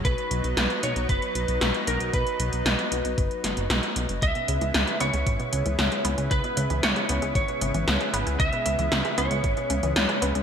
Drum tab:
HH |xxxxxxxxxxxxxxxx|xxxxxxxxxxxxxxxx|xxxxxxxxxxxxxxxx|xxxxxxxxxxxxxxxx|
SD |----o-------o---|----o-----o-o---|----o-------o---|----o-------o---|
BD |o-------o-------|o-------o-------|o-------o-------|o-------o-------|

HH |xxxxxxxxxxxxxxxx|
SD |----o-------o---|
BD |o-------o-------|